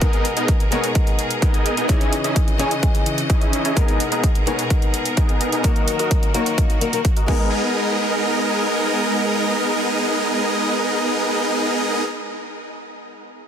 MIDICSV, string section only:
0, 0, Header, 1, 2, 480
1, 0, Start_track
1, 0, Key_signature, 5, "minor"
1, 0, Tempo, 468750
1, 16, Time_signature, 4, 2, 24, 8
1, 13801, End_track
2, 0, Start_track
2, 0, Title_t, "String section"
2, 0, Program_c, 0, 48
2, 0, Note_on_c, 0, 70, 67
2, 16, Note_on_c, 0, 47, 71
2, 16, Note_on_c, 0, 68, 81
2, 1898, Note_off_c, 0, 70, 0
2, 1917, Note_off_c, 0, 47, 0
2, 1917, Note_off_c, 0, 68, 0
2, 1937, Note_on_c, 0, 49, 73
2, 1937, Note_on_c, 0, 52, 67
2, 1937, Note_on_c, 0, 75, 81
2, 3837, Note_off_c, 0, 75, 0
2, 3838, Note_off_c, 0, 49, 0
2, 3838, Note_off_c, 0, 52, 0
2, 3857, Note_on_c, 0, 47, 76
2, 3857, Note_on_c, 0, 68, 81
2, 3858, Note_on_c, 0, 70, 66
2, 5758, Note_off_c, 0, 47, 0
2, 5758, Note_off_c, 0, 68, 0
2, 5776, Note_on_c, 0, 51, 72
2, 5777, Note_on_c, 0, 66, 77
2, 7421, Note_off_c, 0, 70, 0
2, 7439, Note_off_c, 0, 51, 0
2, 7440, Note_off_c, 0, 66, 0
2, 7456, Note_on_c, 0, 56, 69
2, 7456, Note_on_c, 0, 59, 65
2, 7457, Note_on_c, 0, 70, 82
2, 12315, Note_off_c, 0, 56, 0
2, 12315, Note_off_c, 0, 59, 0
2, 12315, Note_off_c, 0, 70, 0
2, 13801, End_track
0, 0, End_of_file